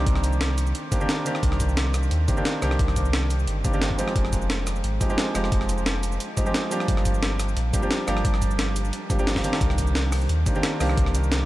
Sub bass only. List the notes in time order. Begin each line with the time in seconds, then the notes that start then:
0.07 C2
1.43 C2
2.11 D#2
2.62 C2
2.79 C2
3.48 G1
3.65 G1
4.16 F1
4.84 G#1
5.35 F1
5.52 F1
6.88 G1
7.57 A#1
8.08 G1
8.25 G1
9.10 G1
9.61 C2
10.29 D#2
10.80 C2
10.97 C2